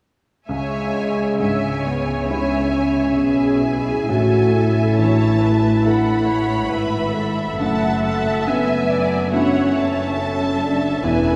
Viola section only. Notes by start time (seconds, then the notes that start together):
0.50 C#5
1.41 E5
1.85 C#5
3.18 G#4
3.63 G#4
4.08 A4
4.98 C#5
5.42 B4
5.84 A4
6.28 C#5
6.71 B4
7.14 A4
7.59 E5
9.33 C#5
10.19 A4
11.05 B4